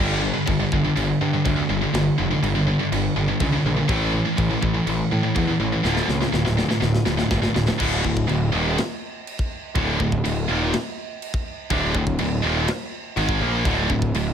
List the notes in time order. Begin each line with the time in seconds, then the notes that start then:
0.00 G1 G2 D3 G3
0.22 G2 D3
0.34 G2 D3
0.46 G1 G2 D3, kick, china
0.60 G2 D3
0.72 G1 G2 D3, kick
0.85 G2 D3
0.96 G1 G2 D3, china
1.21 G2 D3
1.33 G2 D3
1.45 D2 G2 D3, kick, china
1.57 G2 D3
1.69 G1 G2 D3
1.82 G2 D3
1.94 G1 G2 D3, snare, china
2.18 F1 G2 D3
2.31 G2 D3
2.43 G1 G2 D3, china
2.55 G2 D3
2.67 G2 D3
2.79 G2 D3
2.92 G1 G2 D3, china
3.16 G1 G2 D3
3.28 G2 D3
3.40 C#2 G2 D3, kick, china
3.52 G2 D3
3.64 A#1 G2 D3
3.76 G2 D3
3.88 A1 A2 E3 A3, kick, china
4.13 A2 E3
4.25 A2 E3
4.37 A1 A2 E3, kick, china
4.50 A2 E3
4.62 A1 A2 E3, kick
4.74 A2 E3
4.87 A1 A2 E3, china
5.11 A2 E3
5.23 A2 E3
5.35 E2 A2 E3, kick, china
5.48 A2 E3
5.60 A1 A2 E3
5.72 A2 E3
5.83 D1 D2 A2 D3, snare
5.97 snare
6.08 C#2 D2 A2, snare
6.21 D2 A2, snare
6.32 D1 D2 A2, snare
6.45 D2 A2, snare
6.57 D2 A2, snare
6.69 D2 A2, snare
6.80 D1 D2 A2, snare
6.95 snare
7.06 D1 D2 A2, snare
7.17 D2 A2, snare
7.31 G1 D2 A2, kick, snare
7.42 D2 A2, snare
7.54 D1 D2 A2, snare
7.67 D2 A2, snare
7.79 D1 D2 A2 D3, kick, crash
8.04 D1 D2 A2, kick
8.17 kick
8.28 D1 D2 A2, crash
8.52 D#1 D#2 A#2 D#3
8.78 snare, crash
9.27 crash
9.39 kick
9.75 D1 D2 A2 D3, kick, crash
10.00 D1 D2 A2, kick
10.12 kick
10.24 D1 D2 A2, crash
10.48 D#1 D#2 A#2 D#3
10.73 snare, crash
11.22 crash
11.34 kick
11.70 D1 D2 A2 D3, kick, crash
11.94 D1 D2 A2, kick
12.07 kick
12.19 D1 D2 A2, crash
12.42 D#1 D#2 A#2 D#3
12.68 snare, crash
13.16 G#1 G#2 D#3 G#3, crash
13.29 kick
13.40 A#1 A#2 F3 A#3
13.65 D1 D2 A2 D3, kick, crash
13.90 D1 D2 A2, kick
14.02 kick
14.14 D1 D2 A2, crash